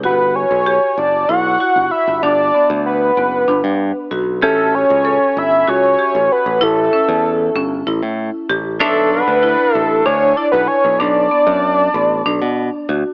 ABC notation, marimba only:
X:1
M:7/8
L:1/8
Q:1/4=96
K:Amix
V:1 name="Marimba"
F2 G2 E F2 | D B,2 B, D2 F | G2 A2 F G2 | E C2 C E2 G |
D2 E2 D E2 | D B,2 B, D2 F |]